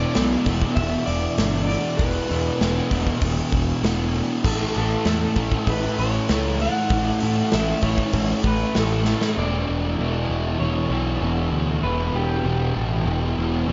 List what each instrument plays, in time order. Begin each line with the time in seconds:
Already playing: distorted electric guitar E2 B2 E3, clean electric guitar D5
0.15 picked electric bass B1, distorted electric guitar E2 B2 E3, snare, open hi-hat
0.46 picked electric bass E1, distorted electric guitar B2 E3, kick, open hi-hat
0.62 kick
0.75 picked electric bass E1, clean electric guitar E5, kick, open hi-hat
1.06 picked electric bass E1, clean electric guitar D5, open hi-hat
1.38 picked electric bass G1, distorted electric guitar E2 B2 E3, snare, open hi-hat
1.67 distorted electric guitar E3, clean electric guitar D5, open hi-hat
1.71 distorted electric guitar B2
1.97 picked electric bass E1, distorted electric guitar E2 B2 E3, clean electric guitar B4, kick, open hi-hat
2.29 picked electric bass E2, distorted electric guitar B2 E3, open hi-hat
2.59 picked electric bass E1, distorted electric guitar E2 B2 E3, snare, open hi-hat
2.89 picked electric bass E1, distorted electric guitar B2 E3, kick, open hi-hat
3.07 kick
3.22 picked electric bass E1, kick, open hi-hat
3.35 clean electric guitar A4
3.52 picked electric bass E1, kick, open hi-hat
3.82 picked electric bass E1, distorted electric guitar E2 B2 E3, snare, open hi-hat
4.13 distorted electric guitar B2 E3, open hi-hat
4.44 picked electric bass A1, distorted electric guitar A2 E3 A3, clean electric guitar A4, kick, crash
4.74 picked electric bass A1, distorted electric guitar E3 A3, open hi-hat
4.78 clean electric guitar A4
5.04 picked electric bass E2, distorted electric guitar A2 E3 A3, snare, open hi-hat
5.36 picked electric bass A1, distorted electric guitar E3 A3, kick, open hi-hat
5.52 kick
5.67 picked electric bass A1, clean electric guitar B4, kick, open hi-hat
5.98 picked electric bass A1, clean electric guitar C#5, open hi-hat
6.29 picked electric bass C#2, distorted electric guitar A2 E3 A3, snare, open hi-hat
6.60 distorted electric guitar E3 A3, clean electric guitar F#5, open hi-hat
6.89 picked electric bass A1, distorted electric guitar A2 E3, kick, open hi-hat
6.94 distorted electric guitar A3
7.20 picked electric bass A2, distorted electric guitar E3 A3, open hi-hat
7.51 picked electric bass A1, distorted electric guitar A2 E3, clean electric guitar E5, snare, open hi-hat
7.56 distorted electric guitar A3
7.82 picked electric bass A1, distorted electric guitar A3, clean electric guitar C#5, kick, open hi-hat
7.86 distorted electric guitar E3
7.98 kick
8.13 picked electric bass A1, kick, open hi-hat
8.43 picked electric bass A1, clean electric guitar B4, kick, open hi-hat
8.75 picked electric bass A1, distorted electric guitar A2 E3 A3, snare, open hi-hat
8.79 clean electric guitar A4
9.05 distorted electric guitar E3 A3, snare
9.21 snare
9.35 picked electric bass E1, distorted electric guitar E2 B2 E3, clean electric guitar D5
9.69 picked electric bass E1
9.97 picked electric bass E1, distorted electric guitar E2 B2 E3
10.29 picked electric bass E1
10.59 picked electric bass E1, distorted electric guitar E2 B2 E3, clean electric guitar C#5
10.90 picked electric bass B1, distorted electric guitar B2 E3
11.21 picked electric bass E1, distorted electric guitar E2 B2 E3
11.52 picked electric bass D2
11.82 picked electric bass E1, distorted electric guitar E2 B2 E3, clean electric guitar B4
12.13 picked electric bass E1, clean electric guitar G4
12.44 picked electric bass E1, distorted electric guitar E2 B2 E3
12.77 picked electric bass A1
13.06 picked electric bass E1, distorted electric guitar E2 B2 E3
13.37 picked electric bass E1, distorted electric guitar B2 E3
13.67 picked electric bass E1, distorted electric guitar E2 B2